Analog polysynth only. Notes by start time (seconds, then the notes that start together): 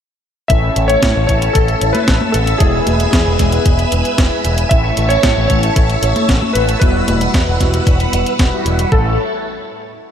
0.50 A3 C#4 E4 A4
1.29 A3 C#4 E4 A4
2.60 G#3 B3 E4 G#4
3.39 G#3 B3 E4 G#4
4.71 A3 C#4 E4 A4
5.50 A3 C#4 E4 A4
6.81 G3 B3 E4 F#4
7.60 G3 B3 E4 F#4
8.52 G3 B3 E4 F#4
8.92 A3 C#4 E4 A4